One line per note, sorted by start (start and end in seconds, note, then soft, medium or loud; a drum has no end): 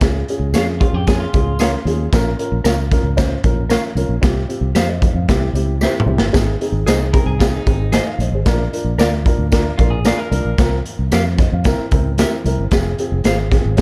0.01 0.22 C#2 medium
0.01 0.18 C#4 loud
0.01 0.18 F4 loud
0.01 0.18 G#4 loud
0.01 kick loud
0.01 snare loud
0.01 closed hi-hat medium
0.01 tambourine medium
0.14 muted conga soft
0.28 0.45 C#4 medium
0.28 0.45 F4 medium
0.28 0.45 G#4 medium
0.28 closed hi-hat medium
0.39 0.54 C#2 medium
0.53 0.85 F2 medium
0.53 0.71 C#4 medium
0.53 0.72 F4 medium
0.53 0.64 G#4 medium
0.53 0.72 G#4 medium
0.53 0.64 C#5 medium
0.53 0.65 F5 medium
0.53 snare loud
0.53 closed hi-hat medium
0.53 tambourine medium
0.53 muted conga soft
0.53 high conga medium
0.80 0.97 C#4 medium
0.80 0.94 F4 medium
0.80 0.98 F4 medium
0.80 0.97 G#4 medium
0.80 kick loud
0.80 closed hi-hat medium
0.80 high conga medium
0.80 low conga medium
0.93 1.25 F2 medium
0.93 1.07 G4 medium
1.07 1.24 C#4 medium
1.07 1.24 F4 medium
1.07 1.20 G#4 medium
1.07 1.24 G#4 loud
1.07 kick medium
1.07 snare loud
1.07 closed hi-hat medium
1.07 tambourine medium
1.20 1.95 F4 medium
1.20 muted conga soft
1.33 1.76 C#2 medium
1.33 1.50 C#4 medium
1.33 1.50 F4 medium
1.33 1.50 G#4 medium
1.33 kick loud
1.33 closed hi-hat medium
1.33 high conga medium
1.59 1.76 C#4 medium
1.59 1.76 F4 medium
1.59 1.70 G#4 medium
1.59 1.76 A#4 medium
1.59 1.70 C#5 medium
1.59 1.70 F5 medium
1.59 snare loud
1.59 closed hi-hat loud
1.59 tambourine medium
1.59 high conga medium
1.73 muted conga soft
1.85 2.07 D#2 loud
1.85 2.02 C#4 medium
1.85 2.03 F4 medium
1.85 2.03 G#4 medium
1.85 closed hi-hat medium
1.85 high conga medium
1.85 low conga medium
2.13 2.34 A#1 loud
2.13 2.29 C#4 medium
2.13 2.29 F4 loud
2.13 2.30 A#4 loud
2.13 kick loud
2.13 snare loud
2.13 closed hi-hat medium
2.13 tambourine medium
2.27 muted conga soft
2.39 2.55 C#4 medium
2.39 2.55 F4 medium
2.39 2.55 A#4 medium
2.39 closed hi-hat medium
2.52 2.62 A#1 medium
2.64 2.96 C#2 medium
2.64 2.81 C#4 medium
2.64 2.82 F4 medium
2.64 2.74 A#4 medium
2.64 2.81 A#4 medium
2.64 2.75 C#5 medium
2.64 2.76 F5 medium
2.64 snare loud
2.64 closed hi-hat medium
2.64 tambourine medium
2.64 high conga medium
2.91 3.08 C#4 medium
2.91 3.08 F4 medium
2.91 3.08 A#4 medium
2.91 kick loud
2.91 snare soft
2.91 closed hi-hat medium
2.91 high conga medium
2.91 low conga medium
3.03 3.35 C#2 medium
3.17 3.34 C#4 loud
3.17 3.34 F4 medium
3.17 3.34 C5 loud
3.17 kick medium
3.17 snare medium
3.17 closed hi-hat medium
3.17 tambourine medium
3.44 3.76 A#1 medium
3.44 3.60 C#4 medium
3.44 3.61 F4 medium
3.44 3.61 A#4 medium
3.44 kick loud
3.44 closed hi-hat medium
3.44 high conga medium
3.69 3.87 C#4 medium
3.69 3.87 F4 medium
3.69 3.80 A#4 medium
3.69 3.87 A#4 medium
3.69 3.80 C#5 medium
3.69 3.81 F5 medium
3.69 snare loud
3.69 closed hi-hat loud
3.69 tambourine medium
3.69 high conga medium
3.95 4.06 C2 medium
3.95 4.13 C#4 medium
3.95 4.13 F4 medium
3.95 4.13 A#4 medium
3.95 closed hi-hat medium
3.95 high conga medium
3.95 low conga medium
4.09 4.20 A#1 medium
4.21 4.44 C2 medium
4.21 4.39 C4 loud
4.21 4.39 F4 medium
4.21 4.39 G4 loud
4.21 kick loud
4.21 snare loud
4.21 closed hi-hat medium
4.21 tambourine medium
4.48 4.65 C4 medium
4.48 4.65 F4 medium
4.48 4.65 G4 medium
4.48 closed hi-hat medium
4.61 4.72 C2 loud
4.75 5.07 F2 medium
4.75 4.85 G4 medium
4.75 4.87 C5 medium
4.75 4.86 C5 medium
4.75 4.86 F5 medium
4.75 snare loud
4.75 closed hi-hat medium
4.75 tambourine medium
4.75 muted conga soft
4.75 high conga medium
4.88 5.14 C5 medium
4.88 5.13 D#5 medium
4.88 muted conga soft
5.02 kick loud
5.02 closed hi-hat medium
5.02 high conga medium
5.02 low conga medium
5.14 5.25 F2 medium
5.14 5.40 F5 medium
5.28 5.49 C2 medium
5.28 5.45 C4 medium
5.28 5.45 E4 medium
5.28 5.45 G4 loud
5.28 kick medium
5.28 snare loud
5.28 closed hi-hat medium
5.28 tambourine medium
5.28 muted conga soft
5.28 high conga soft
5.53 5.86 C#2 medium
5.53 5.71 C4 medium
5.53 5.71 E4 medium
5.53 5.71 G4 medium
5.53 closed hi-hat medium
5.53 high conga medium
5.81 5.98 C4 medium
5.81 5.98 E4 medium
5.81 5.91 G4 medium
5.81 5.98 G4 medium
5.81 5.92 C5 medium
5.81 5.92 E5 medium
5.81 snare medium
5.81 tambourine medium
5.81 muted conga soft
5.81 high conga medium
5.96 muted conga soft
6.00 mid tom medium
6.06 6.17 C2 medium
6.06 6.24 C4 medium
6.06 6.24 E4 medium
6.06 6.24 G4 medium
6.06 high conga medium
6.06 low conga medium
6.18 6.31 G1 medium
6.18 snare loud
6.33 6.56 G#1 loud
6.33 6.50 C4 loud
6.33 6.50 D#4 medium
6.33 6.50 G#4 loud
6.33 kick loud
6.33 snare loud
6.33 closed hi-hat medium
6.33 tambourine medium
6.47 muted conga soft
6.61 6.77 C4 medium
6.61 6.77 D#4 medium
6.61 6.78 G#4 medium
6.61 closed hi-hat medium
6.72 6.83 G#1 medium
6.86 7.18 C2 medium
6.86 7.04 C4 medium
6.86 7.04 D#4 medium
6.86 6.97 G#4 medium
6.86 7.04 G#4 medium
6.86 6.97 C5 medium
6.86 6.98 D#5 medium
6.86 snare loud
6.86 closed hi-hat medium
6.86 tambourine medium
6.86 high conga medium
7.13 7.30 C4 medium
7.13 7.30 D#4 medium
7.13 7.30 G#4 medium
7.13 7.26 A#4 medium
7.13 kick loud
7.13 closed hi-hat medium
7.13 high conga medium
7.13 low conga medium
7.26 7.58 C2 medium
7.26 7.39 G#4 medium
7.39 7.57 C4 medium
7.39 7.57 D#4 medium
7.39 7.53 F4 medium
7.39 7.57 G#4 loud
7.39 kick medium
7.39 snare loud
7.39 closed hi-hat medium
7.39 tambourine medium
7.53 8.28 D#4 medium
7.53 muted conga soft
7.66 7.98 G#1 medium
7.66 7.83 C4 medium
7.66 7.83 D#4 medium
7.66 7.83 G#4 medium
7.66 kick medium
7.66 closed hi-hat medium
7.66 high conga medium
7.92 8.03 G#4 medium
7.92 8.03 C5 medium
7.92 8.04 D#5 loud
7.92 8.06 F5 medium
7.92 8.06 G#5 medium
7.92 snare loud
7.92 closed hi-hat loud
7.92 tambourine medium
7.92 muted conga soft
7.92 high conga medium
8.07 8.19 F5 medium
8.07 muted conga soft
8.18 8.30 A#1 medium
8.18 8.33 C5 medium
8.18 8.33 D#5 medium
8.18 closed hi-hat medium
8.18 high conga medium
8.18 low conga medium
8.32 8.43 G#1 medium
8.32 8.59 G#4 medium
8.32 8.59 C5 medium
8.46 8.67 A#1 loud
8.46 8.63 D4 loud
8.46 8.62 F4 medium
8.46 8.62 A#4 loud
8.46 kick loud
8.46 snare loud
8.46 closed hi-hat medium
8.46 tambourine medium
8.59 muted conga soft
8.73 8.89 D4 medium
8.73 8.89 F4 medium
8.73 8.89 A#4 medium
8.73 closed hi-hat medium
8.84 8.96 A#1 medium
8.98 9.30 D2 medium
8.98 9.16 D4 medium
8.98 9.16 F4 medium
8.98 9.09 A#4 medium
8.98 9.16 A#4 medium
8.98 9.09 D5 medium
8.98 9.10 F5 medium
8.98 snare loud
8.98 closed hi-hat medium
8.98 tambourine loud
8.98 muted conga soft
8.98 high conga medium
9.12 muted conga soft
9.25 9.42 D4 medium
9.25 9.43 F4 medium
9.25 9.43 A#4 medium
9.25 kick loud
9.25 closed hi-hat medium
9.25 high conga medium
9.25 low conga medium
9.38 9.71 D2 medium
9.51 9.68 D4 loud
9.51 9.68 F4 medium
9.51 9.69 A#4 loud
9.51 kick medium
9.51 snare loud
9.51 closed hi-hat medium
9.51 tambourine medium
9.51 muted conga soft
9.66 muted conga soft
9.78 10.11 A#1 medium
9.78 9.96 D4 medium
9.78 9.91 F4 medium
9.78 9.96 F4 medium
9.78 9.96 A#4 medium
9.78 kick medium
9.78 closed hi-hat medium
9.78 high conga medium
9.90 10.18 G#4 medium
10.05 10.22 D4 medium
10.05 10.22 F4 medium
10.05 10.22 A#4 medium
10.05 10.15 A#4 medium
10.05 10.16 D5 medium
10.05 10.16 F5 medium
10.05 snare loud
10.05 closed hi-hat loud
10.05 tambourine medium
10.05 muted conga soft
10.05 high conga medium
10.18 10.56 A#4 medium
10.18 muted conga soft
10.31 10.42 C2 medium
10.31 10.48 D4 medium
10.31 10.48 F4 medium
10.31 10.48 A#4 medium
10.31 closed hi-hat medium
10.31 high conga medium
10.31 low conga medium
10.45 10.56 A#1 medium
10.58 10.80 C2 medium
10.58 10.75 C4 loud
10.58 10.75 F4 medium
10.58 10.75 A#4 loud
10.58 kick loud
10.58 snare loud
10.58 closed hi-hat medium
10.58 tambourine medium
10.85 closed hi-hat medium
10.99 11.09 C2 medium
11.11 11.44 F2 medium
11.11 11.22 G4 medium
11.11 11.22 A#4 medium
11.11 11.37 C5 medium
11.11 11.23 F5 medium
11.11 snare loud
11.11 closed hi-hat medium
11.11 tambourine loud
11.11 high conga medium
11.38 11.52 C5 medium
11.38 11.52 D#5 medium
11.38 kick loud
11.38 snare soft
11.38 closed hi-hat medium
11.38 high conga medium
11.38 low conga medium
11.52 11.63 F2 medium
11.52 11.78 F5 medium
11.64 11.76 C2 medium
11.64 11.82 C4 loud
11.64 11.82 E4 medium
11.64 11.82 A#4 loud
11.64 kick medium
11.64 snare loud
11.64 closed hi-hat medium
11.64 tambourine medium
11.79 muted fingered electric bass stroke soft
11.91 12.24 C#2 medium
11.91 12.09 C4 medium
11.91 12.09 E4 medium
11.91 12.09 A#4 medium
11.91 kick loud
11.91 closed hi-hat medium
11.91 high conga medium
12.18 12.36 C4 medium
12.18 12.36 E4 medium
12.18 12.29 G4 medium
12.18 12.29 A#4 medium
12.18 12.36 A#4 medium
12.18 12.30 E5 medium
12.18 snare loud
12.18 closed hi-hat loud
12.18 tambourine medium
12.18 muted conga soft
12.18 high conga medium
12.44 12.56 C2 medium
12.44 12.62 C4 medium
12.44 12.62 E4 medium
12.44 12.62 A#4 medium
12.44 closed hi-hat medium
12.44 high conga medium
12.44 low conga medium
12.59 12.69 G1 medium
12.71 12.93 F1 loud
12.71 12.89 C4 loud
12.71 12.89 F4 medium
12.71 12.89 G#4 loud
12.71 kick loud
12.71 snare loud
12.71 closed hi-hat medium
12.71 tambourine medium
12.85 muted conga soft
12.98 13.16 C4 medium
12.98 13.16 F4 medium
12.98 13.16 G#4 medium
12.98 closed hi-hat medium
13.12 13.22 F1 loud
13.24 13.57 G#1 medium
13.24 13.42 C4 medium
13.24 13.42 F4 medium
13.24 13.35 G#4 medium
13.24 13.42 G#4 medium
13.24 13.36 C5 medium
13.24 13.36 F5 medium
13.24 snare loud
13.24 closed hi-hat medium
13.24 tambourine medium
13.24 high conga medium
13.51 13.68 C4 medium
13.51 13.68 F4 medium
13.51 13.68 G#4 medium
13.51 kick medium
13.51 snare soft
13.51 closed hi-hat medium
13.51 high conga medium
13.51 low conga medium
13.66 13.81 G#1 medium
13.77 13.81 C4 loud
13.77 13.81 F4 medium
13.77 13.81 G#4 loud
13.77 snare loud
13.77 closed hi-hat medium